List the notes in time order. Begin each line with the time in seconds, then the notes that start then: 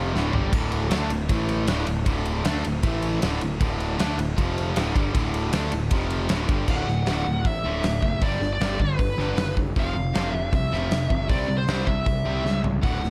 Already playing: F1 F2 C3 F3
0.14 D1 D2 A2 D3, snare
0.33 G1 G2 D3 G3, floor tom
0.52 D1 D2 A2 D3, kick, ride, splash
0.72 ride
0.90 D2 D3 A3 D4, snare, ride
1.10 D1 D2 A2, ride
1.29 A1 A2 E3 A3, kick, ride
1.49 ride
1.67 D1 D2 A2 D3, snare, ride
1.78 snare
1.87 D1 D2 A2, ride
2.06 D1 D2 A2 D3, kick, ride
2.25 ride
2.45 D2 D3 A3 D4, snare, ride
2.64 D1 D2 A2, ride
2.83 A1 A2 E3 A3, kick, ride
3.02 ride
3.22 D1 D2 A2 D3, snare, ride
3.33 snare
3.41 D1 D2 A2, ride
3.60 D1 D2 A2 D3, kick, ride
3.80 ride
3.99 D2 D3 A3 D4, snare, ride
4.18 D1 D2 A2, ride
4.38 F1 F2 C3 F3, kick, ride
4.58 ride
4.76 D1 D2 A2 D3, snare, ride
4.95 G1 G2 D3 G3, kick, ride
5.15 D1 D2 A2 D3, kick, ride
5.34 ride
5.53 D2 D3 A3 D4, snare, ride
5.72 D1 D2 A2, ride
5.91 F1 F2 C3 F3, kick, ride
6.10 ride
6.29 D1 D2 A2 D3, snare, ride
6.49 G1 G2 D3 G3, kick, ride
6.68 D1 D2 A2 D3 F#5, kick, crash
6.88 D1 D2 A2, snare
7.06 D1 D2 A2 D3, snare, open hi-hat
7.26 D1 D2 A2
7.45 A1 D2 A2 E5, kick, open hi-hat
7.64 D1 D2 A2 D3
7.83 D1 D2 A2, snare, open hi-hat
8.02 F#1 D2 A2, kick
8.21 G1 G2 D3 G3 D5, kick, open hi-hat
8.40 G1 G2 D3, snare
8.53 D5
8.60 G1 G2 D3 G3, snare, open hi-hat
8.79 G1 G2 D3 B4, kick
8.99 G1 G2 D3, kick, open hi-hat
9.17 G1 G2 D3 G3, snare
9.36 F#1 G2 D3, snare, open hi-hat
9.57 G2 D3, kick
9.76 F1 F2 C3 F3 F5, kick, open hi-hat
9.94 F1 F2 C3
10.13 F1 F2 C3 F3, snare, open hi-hat
10.28 E5
10.33 F1 F2 C3
10.53 C2 F2 C3 E5, kick, open hi-hat
10.71 F1 F2 C3 F3, snare
10.91 F1 F2 C3, snare, open hi-hat
11.10 G1 F2 C3, kick
11.29 C2 C3 G3 C4 D5, kick, open hi-hat
11.48 C2 C3 G3
11.58 C5
11.67 C2 C3 G3 C4, snare, open hi-hat
11.86 C2 C3 G3 E5, kick
12.05 C2 C3 G3, kick, open hi-hat
12.25 C2 C3 G3 C4
12.44 C#2 C3 G3, snare
12.64 C3 G3, floor tom
12.83 D1 D2 A2 D3 F#5, kick, open hi-hat
13.02 D1 D2 A2, snare